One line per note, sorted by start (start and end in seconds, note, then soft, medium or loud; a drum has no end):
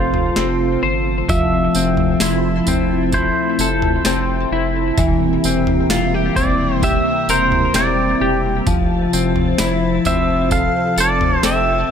0.00 0.31 F1 medium
0.00 1.24 C3 medium
0.00 1.25 F3 medium
0.00 1.28 F3 medium
0.00 1.25 A3 medium
0.00 0.36 C4 soft
0.00 1.25 F4 medium
0.00 2.21 F4 soft
0.00 1.25 A4 medium
0.00 0.80 C5 medium
0.00 0.82 C5 medium
0.14 floor tom medium
0.36 0.77 F1 loud
0.36 1.75 C4 medium
0.36 snare medium
0.83 1.23 G1 medium
0.83 3.60 C5 medium
1.28 1.69 F1 loud
1.28 11.91 C3 medium
1.28 4.94 F3 medium
1.28 4.98 F3 medium
1.28 4.94 A3 medium
1.28 10.48 E4 medium
1.28 4.94 A4 medium
1.28 3.19 E5 loud
1.28 kick loud
1.28 floor tom loud
1.28 tambourine medium
1.75 2.15 F1 loud
1.75 2.68 C4 medium
1.75 tambourine medium
1.97 floor tom medium
2.20 2.61 F1 loud
2.20 3.14 E4 medium
2.20 5.07 C6 medium
2.20 snare loud
2.20 tambourine loud
2.67 3.28 F1 loud
2.67 4.06 C4 medium
2.67 floor tom medium
2.67 tambourine medium
3.12 4.52 E4 medium
3.12 4.48 C5 medium
3.12 kick medium
3.12 floor tom medium
3.12 tambourine medium
3.59 4.00 F1 medium
3.59 5.08 A4 medium
3.59 tambourine medium
3.82 floor tom medium
4.05 4.46 F1 loud
4.05 5.45 C4 medium
4.05 5.40 A5 medium
4.05 snare medium
4.05 tambourine loud
4.51 4.92 F1 loud
4.51 5.90 E4 medium
4.97 5.38 E1 loud
4.97 8.67 E3 medium
4.97 8.63 G3 medium
4.97 8.63 A#3 medium
4.97 8.63 A#4 medium
4.97 7.84 E5 medium
4.97 kick loud
4.97 floor tom loud
4.97 tambourine medium
5.44 5.85 E1 loud
5.44 6.37 C4 medium
5.44 tambourine medium
5.67 floor tom medium
5.90 6.30 E1 loud
5.90 6.14 F4 medium
5.90 snare loud
5.90 tambourine loud
6.14 6.82 G4 soft
6.36 6.97 E1 loud
6.36 7.75 C4 medium
6.36 6.84 D5 medium
6.36 kick medium
6.36 floor tom medium
6.36 tambourine medium
6.82 8.20 G4 medium
6.82 7.31 E5 loud
6.82 kick medium
6.82 floor tom medium
6.82 tambourine medium
7.28 7.69 E1 loud
7.28 8.77 A#4 medium
7.28 7.77 C5 medium
7.28 tambourine medium
7.52 floor tom medium
7.74 8.15 E1 loud
7.74 9.13 C4 medium
7.74 9.09 A#4 medium
7.74 8.40 D5 medium
7.74 snare medium
7.74 tambourine loud
8.21 8.61 E1 medium
8.21 8.76 G4 medium
8.67 9.07 F1 loud
8.67 11.91 F3 medium
8.67 11.91 C4 medium
8.67 11.91 A5 medium
8.67 kick loud
8.67 floor tom loud
8.67 tambourine medium
9.13 9.54 F1 medium
9.13 10.06 C4 medium
9.13 tambourine medium
9.36 floor tom medium
9.58 10.00 F1 loud
9.58 11.90 E4 medium
9.58 snare loud
9.58 tambourine loud
10.05 10.66 F1 loud
10.05 11.44 C4 medium
10.05 10.52 E5 loud
10.05 floor tom medium
10.05 tambourine medium
10.51 11.42 A4 medium
10.51 11.91 A4 medium
10.51 10.99 F5 loud
10.51 kick medium
10.51 floor tom medium
10.51 tambourine medium
10.97 11.38 F1 loud
10.97 11.91 A4 medium
10.97 11.45 D5 loud
10.97 tambourine medium
11.21 floor tom medium
11.43 11.84 F1 loud
11.43 11.91 C4 medium
11.43 11.91 A4 medium
11.43 11.91 C5 medium
11.43 11.91 E5 medium
11.43 snare loud
11.43 tambourine loud